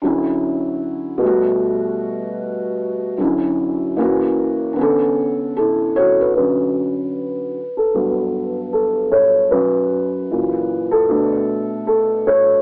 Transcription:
0.02 D3 F#3 C#4
0.06 E4
1.18 B2 G3
1.23 A3 F#4
3.17 F#2 D3 F#3 C#4
3.22 E4
3.96 E3 A#3 C#4
4.00 F#4
4.73 D3 B3
4.79 C#4 A4
5.57 E4 A4
5.96 F#4 C#5
6.21 F#4 B4
6.36 D3 F#3 C#4 B4
7.77 A4
7.94 G2 F#3 B3
8.72 A4
9.12 C#5
9.51 F#2 F#3 C#4 B4
10.30 F#2 A#2 E3
10.91 A4
11.09 B2 A3 D4
11.87 A4
12.27 C#5

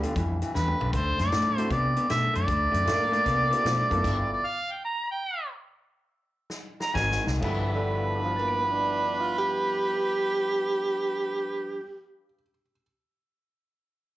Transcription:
0.01 G2 D3 B3 D4 F4 A4, closed hi-hat
0.16 F2 G2 E3, kick, closed hi-hat
0.42 G2 E3, closed hi-hat
0.54 E2 G2 D3 B4, snare
0.68 mid tom
0.80 B1 G2 D3, floor tom
0.92 D2 D3 A3 B4, kick, closed hi-hat
0.96 C5
1.19 F#2 D3 A3 D5, snare, closed hi-hat
1.32 A2 D3 A3, snare, closed hi-hat
1.56 D3 A3 C4 E4 F#4 A4 C5, closed hi-hat
1.70 C3 D3 B3 D5, kick, closed hi-hat
1.96 D3 B3, closed hi-hat
2.09 B2 D3 A3 E5, snare, closed hi-hat
2.33 F#2 D3 A3 D5, closed hi-hat
2.47 D2 D3 A3, kick, closed hi-hat
2.71 F#2 D3 A3, closed hi-hat
2.85 A2 D3 A3 A#3, snare, closed hi-hat
3.11 D3 A3, closed hi-hat
3.25 C3 D3 B3, kick, snare, closed hi-hat
3.51 D3 B3 C4 E4 F#4 A4, closed hi-hat
3.64 B2 D3 F3 A3, snare, closed hi-hat
3.90 F#2 D3 A3 A#3 B3 E4 F4 A4, kick, closed hi-hat
4.04 G1 G2 D3, kick, closed hi-hat, crash
4.33 D5
4.46 F5
4.72 G5
4.85 A#5
5.12 G5
6.50 snare
6.80 A#5, snare
6.93 G#1 G#2 D#3 C4 D#4 F#4 A#4 G#5, kick, snare
7.11 snare
7.24 C2 G#2 D#3, snare
7.40 G2 F3 B3 D4 A4, kick, crash
7.44 E4 B4
7.75 D3
7.91 D5
7.98 F5
8.06 A5
8.15 D6
8.24 F3 F6
8.36 A#3 A6
8.48 D7
8.72 D4
9.21 F4
9.38 G4

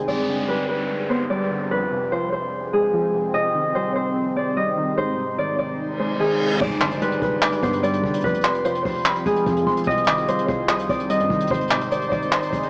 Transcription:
Already playing: G#4 C5
0.08 G2 G3 B4 D5, downlifter
0.28 D3
0.48 G3 B4
0.69 B4
1.10 B3 C5
1.30 G3 D5
1.51 D3
1.71 F2 F3 C4 G#4 B4
1.92 C3
2.12 F3 C5
2.32 C5
2.73 G#3 G#4
2.93 F3
3.14 C3
3.34 C3 G3 D#4 D#5
3.55 D#3
3.75 G3 C5
3.96 C5
4.36 C4 D5
4.57 G3 D#5
4.77 D#3
4.97 G#2 G#3 D#4 C5
5.18 C3
5.38 D#3 D5
5.59 D5
5.79 reverse cymbal
6.00 G#3 C5
6.20 D#3 G#4
6.41 C3
6.61 G1 G2 G3 G4 B4 D5, kick, crash, impact
6.71 closed hi-hat
6.81 D3 C6, clap, closed hi-hat
6.91 B1, closed hi-hat
7.02 G3 B4, closed hi-hat
7.12 closed hi-hat
7.22 G1 B4, kick, closed hi-hat
7.42 D6, clap, closed hi-hat
7.53 F1, closed hi-hat
7.63 G2 B3 C5, kick, closed hi-hat
7.73 closed hi-hat
7.83 G3 D5, closed hi-hat
7.93 closed hi-hat
8.04 G1 D3, kick
8.14 closed hi-hat
8.21 F1 F2 F3 C4 F4 G#4 B4, kick, closed hi-hat
8.27 closed hi-hat
8.34 closed hi-hat
8.41 C3 C6, clap, closed hi-hat
8.48 closed hi-hat
8.55 closed hi-hat
8.65 F3 C5, closed hi-hat
8.75 closed hi-hat
8.85 F1 C5, kick, open hi-hat
9.06 B5, clap, closed hi-hat
9.16 closed hi-hat
9.26 F1 G#3 G#4, kick, closed hi-hat
9.36 closed hi-hat
9.46 F2 F3, kick, closed hi-hat
9.57 closed hi-hat
9.67 F1 C3 C6, kick
9.77 closed hi-hat
9.84 C2 C3 G3 D#4 C5 D#5, kick, closed hi-hat
9.91 closed hi-hat
9.98 closed hi-hat
10.04 D#3 D6, clap, closed hi-hat
10.11 closed hi-hat
10.18 closed hi-hat
10.28 G3 C5, closed hi-hat
10.38 closed hi-hat
10.49 C2 C5, kick, closed hi-hat
10.69 D#6, clap, closed hi-hat
10.79 closed hi-hat
10.89 C2 C4 D5, kick, closed hi-hat
11.00 closed hi-hat
11.10 G3 D#5, closed hi-hat
11.20 G2, closed hi-hat
11.30 C2 D#3, kick
11.40 closed hi-hat
11.47 G#1 G#2 G#3 D#4 G#4 C5, kick, closed hi-hat
11.54 closed hi-hat
11.61 closed hi-hat
11.68 C3 D6, clap, closed hi-hat
11.74 closed hi-hat
11.81 closed hi-hat
11.91 D#3 D5, closed hi-hat
12.02 closed hi-hat
12.12 G#1 D5, kick, closed hi-hat, open hi-hat
12.22 closed hi-hat
12.32 C6, clap, closed hi-hat
12.42 closed hi-hat
12.52 G#1 G#3 C5, kick, closed hi-hat
12.63 closed hi-hat

